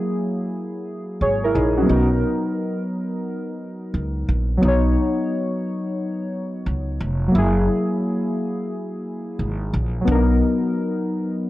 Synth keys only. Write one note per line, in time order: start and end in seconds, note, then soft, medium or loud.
0.00 1.48 F#3 medium
0.00 1.50 A#3 medium
0.00 1.18 E4 medium
0.00 1.19 G#4 medium
1.22 1.42 G#4 medium
1.22 1.42 C#5 medium
1.44 1.55 E4 medium
1.44 1.54 A#4 medium
1.55 1.76 D#4 medium
1.55 1.75 G#4 medium
1.77 2.09 C#4 medium
1.77 2.09 F#4 medium
1.82 4.54 F#3 medium
1.82 4.55 B3 medium
1.89 4.57 D#4 medium
1.89 4.59 A#4 medium
4.58 7.27 F#3 medium
4.58 7.30 B3 medium
4.64 7.31 D#4 medium
4.64 7.33 C#5 medium
7.28 9.99 F#3 medium
7.28 10.01 A#3 medium
7.35 10.03 E4 medium
7.35 10.05 G#4 medium
10.01 11.50 F#3 medium
10.01 11.50 B3 medium
10.08 10.15 D4 medium
10.08 11.50 A#4 medium
10.14 11.50 D#4 medium